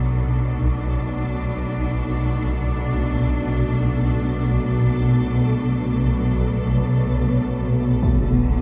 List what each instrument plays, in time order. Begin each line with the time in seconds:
Already playing: synth drone B1 B2, cello section B2 F#3 B3 D4, synth texture A3 A4
0.72 cello section A3
8.02 cello section D3, synth texture E4 E5, impact